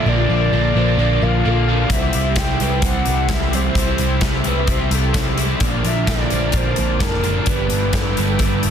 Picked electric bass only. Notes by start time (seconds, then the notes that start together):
0.06 A#1
0.29 A#1
0.52 A#1
0.76 A#1
0.98 A#1
1.22 A#1
1.46 A#1
1.90 C2
2.15 C2
2.60 C2
2.82 C2
3.07 C2
3.75 C2
3.99 C2
4.22 C2
4.45 C2
4.68 C2
4.91 C2
5.14 C2
5.61 A#1
5.84 A#1
6.07 A#1
6.32 A#1
6.53 A#1
6.78 A#1
7.00 F#1
7.47 G1
7.72 G1
7.93 G1
8.18 G1
8.39 G1
8.65 G1